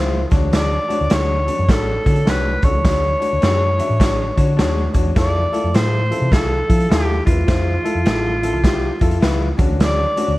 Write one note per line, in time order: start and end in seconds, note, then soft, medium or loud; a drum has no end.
0.00 0.24 C#2 medium
0.00 0.20 E4 medium
0.00 0.20 F4 medium
0.00 0.32 F4 medium
0.00 0.20 C5 loud
0.14 high conga medium
0.31 0.76 D2 medium
0.31 0.75 D4 medium
0.31 0.75 F#4 medium
0.31 0.76 C#5 medium
0.31 kick medium
0.31 snare soft
0.31 closed hi-hat medium
0.31 low conga medium
0.43 high conga medium
0.53 1.15 D5 medium
0.53 snare medium
0.53 closed hi-hat medium
0.88 1.04 D4 medium
0.88 1.04 F#4 medium
0.88 1.04 C#5 medium
0.88 closed hi-hat medium
0.88 high conga medium
1.01 1.09 D2 medium
1.09 1.35 D4 medium
1.09 1.36 F#4 medium
1.09 1.36 C#5 medium
1.09 snare loud
1.09 closed hi-hat loud
1.09 muted conga soft
1.14 1.72 C#5 medium
1.30 high conga soft
1.46 1.61 D4 medium
1.46 1.62 F#4 medium
1.46 1.62 D5 medium
1.46 closed hi-hat medium
1.46 muted conga soft
1.46 low conga medium
1.59 1.67 F#2 medium
1.68 1.97 A1 medium
1.68 1.93 D4 medium
1.68 1.94 F#4 medium
1.68 2.30 A4 medium
1.68 1.94 C#5 medium
1.68 kick medium
1.68 snare loud
1.68 closed hi-hat medium
2.04 2.22 D3 medium
2.04 2.19 D4 medium
2.04 2.20 F#4 medium
2.04 2.20 C#5 medium
2.04 kick medium
2.04 closed hi-hat medium
2.04 muted conga soft
2.16 closed hi-hat soft
2.25 2.55 C2 medium
2.25 2.51 D4 medium
2.25 2.51 F#4 medium
2.25 2.66 B4 medium
2.25 2.52 C#5 medium
2.25 snare medium
2.25 closed hi-hat medium
2.46 high conga medium
2.62 2.80 C#2 medium
2.62 2.78 D4 medium
2.62 2.78 F#4 medium
2.62 2.79 A4 medium
2.62 4.96 C#5 medium
2.62 kick medium
2.62 closed hi-hat medium
2.62 low conga medium
2.74 high conga medium
2.84 3.13 D2 medium
2.84 3.09 D4 medium
2.84 3.10 F#4 medium
2.84 3.10 C#5 loud
2.84 kick loud
2.84 snare medium
2.84 closed hi-hat medium
2.84 muted conga soft
3.20 3.35 D4 medium
3.20 3.35 F#4 medium
3.20 3.36 C#5 medium
3.20 closed hi-hat medium
3.20 high conga medium
3.33 3.41 D2 medium
3.41 3.79 F#2 medium
3.41 3.67 D4 medium
3.41 3.67 F#4 medium
3.41 3.67 C#5 medium
3.41 snare loud
3.41 closed hi-hat medium
3.61 high conga soft
3.78 3.93 D4 medium
3.78 3.93 F#4 medium
3.78 3.94 E5 medium
3.78 closed hi-hat medium
3.78 muted conga soft
3.78 low conga medium
3.90 3.98 A2 medium
3.99 4.29 A1 medium
3.99 4.25 D4 medium
3.99 4.25 F#4 medium
3.99 4.25 C#5 medium
3.99 kick medium
3.99 snare medium
3.99 closed hi-hat medium
4.36 4.60 D3 medium
4.36 4.51 D4 medium
4.36 4.51 F#4 medium
4.36 4.52 C#5 medium
4.36 kick medium
4.36 closed hi-hat medium
4.57 4.87 D#2 medium
4.57 4.82 D4 medium
4.57 4.83 F#4 medium
4.57 4.83 C#5 loud
4.57 snare medium
4.57 closed hi-hat medium
4.57 muted conga soft
4.77 high conga medium
4.93 5.11 E2 medium
4.93 5.09 D4 medium
4.93 5.09 F#4 medium
4.93 5.09 C#5 medium
4.93 kick medium
4.93 closed hi-hat medium
4.93 muted conga soft
4.93 low conga medium
5.06 high conga medium
5.15 5.44 F2 loud
5.15 5.40 E4 medium
5.15 5.41 F4 medium
5.15 5.41 A4 medium
5.15 5.76 D5 medium
5.15 kick loud
5.15 snare medium
5.15 closed hi-hat medium
5.51 5.67 E4 medium
5.51 5.67 F4 medium
5.51 5.67 A4 loud
5.51 closed hi-hat medium
5.51 muted conga soft
5.51 high conga medium
5.64 5.72 F2 medium
5.73 6.11 A2 medium
5.73 5.98 E4 medium
5.73 5.99 F4 medium
5.73 5.99 A4 medium
5.73 6.34 C5 medium
5.73 snare loud
5.73 closed hi-hat medium
5.73 muted conga soft
5.93 high conga soft
6.10 6.25 E4 medium
6.10 6.25 F4 medium
6.10 6.26 A4 medium
6.10 closed hi-hat medium
6.10 muted conga soft
6.10 low conga medium
6.21 6.30 C3 medium
6.31 6.60 C2 medium
6.31 6.56 E4 medium
6.31 6.57 F4 medium
6.31 6.91 A4 medium
6.31 6.57 A4 medium
6.31 kick medium
6.31 snare medium
6.31 closed hi-hat medium
6.31 muted conga soft
6.68 6.86 F3 medium
6.68 6.83 E4 medium
6.68 6.83 F4 medium
6.68 6.83 A4 medium
6.68 kick medium
6.68 closed hi-hat medium
6.80 closed hi-hat soft
6.89 7.19 D#2 medium
6.89 7.14 E4 medium
6.89 7.15 F4 medium
6.89 7.25 G4 medium
6.89 7.15 A4 loud
6.89 snare loud
6.89 closed hi-hat medium
6.89 muted conga soft
7.09 high conga medium
7.25 7.43 E2 medium
7.25 7.40 E4 medium
7.25 9.54 F4 medium
7.25 7.41 F4 medium
7.25 7.41 B4 medium
7.25 kick medium
7.25 closed hi-hat medium
7.25 muted conga soft
7.25 low conga medium
7.38 high conga medium
7.46 7.76 F2 loud
7.46 7.72 E4 medium
7.46 7.72 F4 medium
7.46 7.73 C5 loud
7.46 kick loud
7.46 snare medium
7.46 closed hi-hat medium
7.83 7.98 E4 medium
7.83 7.99 F4 medium
7.83 7.99 A4 medium
7.83 closed hi-hat medium
7.83 high conga medium
7.95 8.03 F2 medium
8.04 8.53 A1 medium
8.04 8.30 E4 medium
8.04 8.30 F4 medium
8.04 8.31 A4 medium
8.04 snare loud
8.04 closed hi-hat medium
8.25 high conga soft
8.42 8.57 E4 medium
8.42 8.57 F4 medium
8.42 8.58 A4 medium
8.42 closed hi-hat medium
8.42 muted conga soft
8.42 low conga medium
8.53 8.89 C2 loud
8.64 8.89 E4 medium
8.64 8.89 F4 medium
8.64 8.90 G4 loud
8.64 kick medium
8.64 snare medium
8.64 closed hi-hat medium
8.64 muted conga soft
8.99 9.17 F2 medium
8.99 9.15 E4 medium
8.99 9.15 F4 medium
8.99 9.16 A4 medium
8.99 kick medium
8.99 closed hi-hat medium
8.99 muted conga soft
9.11 closed hi-hat soft
9.20 9.50 C#2 loud
9.20 9.46 E4 loud
9.20 9.47 F4 medium
9.20 9.47 B4 loud
9.20 snare medium
9.20 closed hi-hat medium
9.20 muted conga soft
9.40 high conga medium
9.57 10.03 D2 loud
9.57 10.01 C#4 medium
9.57 10.02 D4 medium
9.57 10.02 F#4 medium
9.57 kick loud
9.57 closed hi-hat medium
9.57 muted conga soft
9.57 low conga medium
9.69 high conga medium
9.80 10.36 D5 loud
9.80 snare loud
9.80 closed hi-hat medium
10.16 10.31 C#4 medium
10.16 10.31 D4 medium
10.16 10.32 F#4 loud
10.16 closed hi-hat medium
10.16 muted conga soft
10.16 high conga medium
10.28 10.36 D2 medium